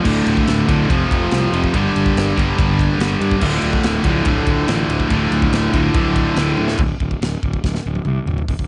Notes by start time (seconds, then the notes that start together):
Already playing: A3 F4
0.04 D1 D2 A2 D3 F3 A4, kick, crash
0.26 D1, ride
0.37 kick
0.47 D1, snare, ride
0.68 D1 D2 A2 D3, kick, ride
0.88 F1 F2 C3 F3 A3 F4, kick, ride
1.11 F1, kick, ride
1.31 C2, snare, ride
1.52 F1 F2 C3 F3, ride
1.64 kick
1.73 G1 G2 D3 G3 A#3 G4 A#4, kick, ride
1.95 G1, ride
2.06 kick
2.16 G1, snare, ride
2.36 G1 G2 D3 G3, kick, ride
2.57 G1 G2 D3 G3, kick, ride
2.79 kick, ride
2.98 G1 G2 D3 G3, snare, ride
3.20 G2, ride
3.31 kick
3.40 D1 D2 A2 D3 F3 A3 F4 A4, kick, crash
3.62 D1, ride
3.73 kick
3.83 D1, snare, ride
4.04 D1 D2 A2 D3, kick, ride
4.24 D1 D2 A2 D3, kick, ride
4.47 D1, kick, ride
4.67 A1 D2 A2 D3, snare, ride
4.88 D1, ride
5.00 kick
5.09 D1 D2 A2 D3 A4, kick, ride
5.31 D1, ride
5.42 kick
5.52 D1, snare, ride
5.73 D1 D2 A2 D3, kick, ride
5.94 D1 D2 A2 D3, kick, ride
6.16 kick, ride
6.36 D1 D2 A2 D3, snare, ride
6.57 D2, high tom
6.68 snare
6.78 D1, kick, crash
7.00 D1, kick
7.11 kick
7.21 D1, snare, crash
7.43 D1, kick
7.53 kick
7.64 D1, kick, snare
7.75 snare
7.86 D1
7.95 high tom
8.05 C2, mid tom
8.26 D1, floor tom
8.38 floor tom
8.48 D1, kick, open hi-hat
8.59 D1, kick